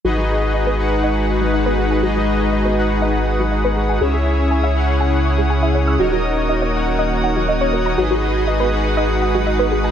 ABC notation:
X:1
M:4/4
L:1/16
Q:1/4=121
K:G#m
V:1 name="Synth texture"
d'16- | d'16- | d'16- | d'16- |
d'16 |]
V:2 name="Synth pluck"
F F z2 d B z2 d z f F d B G g | F F z2 d B z2 d z f F d B G g | G G z2 g e z2 g z c' G g e c e' | F F z2 d c z2 d z f F d c A a |
F F z2 d B z2 d z f F d B G g |]
V:3 name="Supersaw synth"
[DFGBd]6 [DFGBf]8- [DFGBf]2 | [DFGBd]6 [DFGBf]8- [DFGBf]2 | [CEGce]6 [CEGcf]8- [CEGcf]2 | [DFAcd]6 [DFAcf]8- [DFAcf]2 |
[DFGBd]6 [DFGBf]8- [DFGBf]2 |]
V:4 name="Analog synth pad"
[G,DFB]16- | [G,DFB]16 | [C,CEG]16 | [D,A,F]16 |
[G,DB]16 |]
V:5 name="Sub bass" clef=bass
G,,,16- | G,,,16 | C,,16 | D,,,16 |
G,,,16 |]